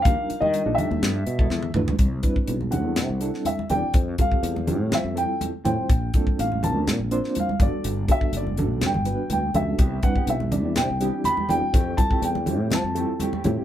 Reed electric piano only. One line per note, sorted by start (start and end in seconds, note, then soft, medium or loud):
0.05 0.40 G3 medium
0.05 0.41 D4 medium
0.05 0.41 D#4 medium
0.05 0.41 F4 medium
0.05 0.41 A#4 medium
0.54 0.63 G3 medium
0.54 0.63 D4 medium
0.54 0.63 D#4 medium
0.54 0.63 F4 medium
0.54 0.64 A#4 medium
0.66 1.02 G3 medium
0.66 1.02 D4 medium
0.66 1.03 D#4 medium
0.66 1.03 F4 medium
0.66 1.03 A4 medium
1.74 1.93 A3 medium
1.74 1.93 D4 medium
1.74 1.93 E4 medium
1.74 1.93 F4 medium
1.74 1.93 B4 medium
2.23 2.59 G3 medium
2.23 2.59 C4 medium
2.23 2.59 D4 medium
2.23 2.59 E4 medium
2.23 2.59 B4 medium
2.71 3.07 G3 medium
2.71 3.08 C4 medium
2.71 3.08 D4 medium
2.71 3.08 E4 medium
2.71 3.08 A4 medium
3.21 3.57 G3 medium
3.21 3.57 C4 medium
3.21 3.57 D4 medium
3.21 3.57 E4 medium
3.21 3.57 A4 medium
3.70 3.95 G3 medium
3.70 3.95 C4 medium
3.70 3.95 D4 medium
3.70 3.95 E4 medium
3.70 3.95 D5 medium
4.19 4.54 G3 medium
4.19 4.55 C4 medium
4.19 4.55 F4 medium
4.19 4.55 G4 medium
4.19 4.55 A4 medium
4.67 5.03 G3 medium
4.67 5.03 C4 medium
4.67 5.03 E4 medium
4.67 5.03 F4 medium
4.67 5.04 G4 medium
5.15 5.51 G3 medium
5.15 5.51 C4 medium
5.15 5.52 E4 medium
5.15 5.52 F4 medium
5.15 5.52 A4 medium
5.65 5.89 G3 medium
5.65 5.89 C4 medium
5.65 5.89 E4 medium
5.65 5.90 F4 medium
5.65 5.90 C5 medium
6.15 6.50 A#3 medium
6.15 6.50 C4 medium
6.15 6.50 D4 medium
6.15 6.50 F4 medium
6.15 6.50 A4 medium
6.63 6.99 A#3 medium
6.63 6.99 C4 medium
6.63 6.99 D4 medium
6.63 6.99 F4 medium
6.63 6.99 A#4 medium
7.11 7.47 A#3 medium
7.11 7.47 C4 medium
7.11 7.47 D4 medium
7.11 7.47 F4 medium
7.11 7.47 C5 loud
7.61 8.00 G3 medium
7.61 8.00 B3 medium
7.61 8.00 D4 medium
7.61 8.01 F#4 medium
7.61 8.00 A4 medium
8.08 8.44 G3 medium
8.08 8.44 B3 medium
8.08 8.44 D4 medium
8.08 8.44 F#4 medium
8.08 8.44 A4 medium
8.57 8.93 G3 medium
8.57 8.93 B3 medium
8.57 8.93 D4 medium
8.57 8.93 F#4 medium
8.57 8.94 A4 medium
9.05 9.41 G3 medium
9.05 9.41 B3 medium
9.05 9.41 D4 medium
9.05 9.42 F#4 medium
9.05 9.42 B4 medium
9.54 9.79 G3 medium
9.54 9.79 B3 medium
9.54 9.79 D4 medium
9.54 9.79 F#4 medium
9.54 9.79 A4 medium
10.03 10.39 G3 medium
10.03 10.39 C4 medium
10.03 10.39 D4 medium
10.03 10.39 E4 medium
10.03 10.39 B4 medium
10.52 10.88 G3 medium
10.52 10.88 C4 medium
10.52 10.88 D4 medium
10.52 10.88 E4 medium
10.52 10.88 D5 medium
11.01 11.36 G3 medium
11.01 11.36 C4 medium
11.01 11.36 D4 medium
11.01 11.37 E4 medium
11.01 11.37 G4 medium
11.50 11.74 G3 medium
11.50 11.74 C4 medium
11.50 11.75 D4 medium
11.50 11.75 E4 medium
11.50 11.75 F#4 medium
11.97 12.34 G3 medium
11.97 12.34 C4 medium
11.97 12.34 E4 medium
11.97 12.34 F4 medium
11.97 12.34 A4 medium
12.47 12.83 G3 medium
12.47 12.83 C4 medium
12.47 12.83 E4 medium
12.47 12.83 F4 medium
12.47 12.83 G4 medium
12.95 13.31 G3 medium
12.95 13.31 C4 medium
12.95 13.31 E4 medium
12.95 13.31 F4 medium
12.95 13.31 A4 medium
13.45 13.64 G3 medium
13.45 13.64 C4 medium
13.45 13.64 E4 medium
13.45 13.64 F4 medium
13.45 13.64 G4 loud